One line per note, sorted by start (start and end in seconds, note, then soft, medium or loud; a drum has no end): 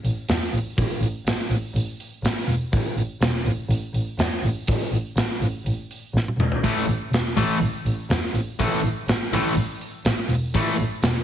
0.05 0.13 A1 medium
0.05 open hi-hat medium
0.29 0.37 E2 medium
0.29 snare medium
0.29 open hi-hat medium
0.53 0.61 A1 medium
0.53 open hi-hat medium
0.78 0.86 A1 medium
0.78 kick loud
0.78 open hi-hat medium
1.01 1.09 A1 medium
1.01 open hi-hat medium
1.25 1.33 A1 medium
1.25 snare loud
1.25 open hi-hat medium
1.50 1.58 A1 medium
1.50 open hi-hat medium
1.74 1.82 A1 medium
1.74 open hi-hat medium
2.00 open hi-hat soft
2.23 2.31 A1 medium
2.23 snare loud
2.23 open hi-hat medium
2.48 2.56 E1 medium
2.48 open hi-hat soft
2.73 2.81 A1 medium
2.73 kick loud
2.73 open hi-hat medium
2.96 3.04 A1 medium
2.96 open hi-hat medium
3.21 3.29 E1 medium
3.21 snare loud
3.21 open hi-hat medium
3.45 3.53 A1 medium
3.45 open hi-hat medium
3.69 3.77 A1 loud
3.69 open hi-hat medium
3.94 4.02 A1 medium
3.94 open hi-hat medium
4.18 4.26 E2 medium
4.18 snare loud
4.18 open hi-hat medium
4.43 4.51 A1 medium
4.43 open hi-hat medium
4.67 4.76 A1 medium
4.67 kick loud
4.67 open hi-hat medium
4.91 4.99 A1 medium
4.91 open hi-hat medium
5.16 5.24 A1 medium
5.16 snare loud
5.16 open hi-hat medium
5.40 5.48 A1 medium
5.40 open hi-hat medium
5.65 5.73 A1 medium
5.65 open hi-hat medium
5.91 open hi-hat soft
6.14 6.22 A1 medium
6.14 snare medium
6.28 high tom medium
6.38 6.46 E1 medium
6.38 mid tom medium
6.52 floor tom medium
6.64 6.72 A1 medium
6.64 6.84 A2 medium
6.64 6.84 E3 loud
6.64 6.84 A3 medium
6.64 kick loud
6.64 open hi-hat medium
6.87 6.95 A1 medium
6.87 open hi-hat medium
7.12 7.20 E1 medium
7.12 snare loud
7.12 open hi-hat medium
7.37 7.45 A1 medium
7.37 7.57 A2 medium
7.37 7.57 E3 medium
7.37 7.57 A3 medium
7.37 open hi-hat medium
7.61 7.69 A1 medium
7.61 open hi-hat medium
7.85 7.93 A1 medium
7.85 open hi-hat medium
8.10 8.18 E2 medium
8.10 snare loud
8.10 open hi-hat medium
8.34 8.42 A1 medium
8.34 open hi-hat medium
8.59 8.67 A1 medium
8.59 8.79 A2 medium
8.59 8.79 E3 medium
8.59 8.79 A3 medium
8.59 kick loud
8.59 open hi-hat medium
8.82 8.90 A1 medium
8.82 open hi-hat medium
9.07 9.15 A1 medium
9.07 snare loud
9.07 open hi-hat medium
9.32 9.40 A1 medium
9.32 9.53 A2 medium
9.32 9.53 E3 loud
9.32 9.53 A3 loud
9.32 open hi-hat medium
9.56 9.64 A1 medium
9.56 open hi-hat medium
9.81 open hi-hat soft
10.05 10.13 A1 medium
10.05 snare loud
10.05 open hi-hat medium
10.29 10.37 E1 medium
10.29 open hi-hat medium
10.54 10.62 A1 medium
10.54 10.74 A2 medium
10.54 10.75 E3 medium
10.54 10.75 A3 loud
10.54 kick loud
10.54 open hi-hat medium
10.79 10.87 A1 medium
10.79 open hi-hat medium
11.03 11.11 E1 medium
11.03 snare loud
11.03 open hi-hat medium